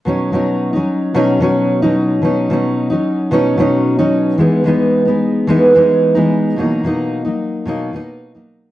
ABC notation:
X:1
M:4/4
L:1/16
Q:1/4=110
K:B
V:1 name="Steel-string acoustic guitar"
[B,,F,CD]2 [B,,F,CD]3 [F,CD]3 [B,,F,CD]2 [B,,F,CD]3 [B,,F,CD]3 | [B,,F,CD]2 [B,,F,CD]3 [F,CD]3 [B,,F,CD]2 [B,,F,CD]3 [B,,F,CD]3 | [E,G,B,D]2 [E,G,B,D]3 [G,B,D]3 [E,G,B,D]2 [E,G,B,D]3 [E,G,B,D]3 | [B,,F,A,D]2 [B,,F,A,D]3 [F,A,D]3 [B,,F,A,D]2 [B,,F,A,D]3 [B,,F,A,D]3 |]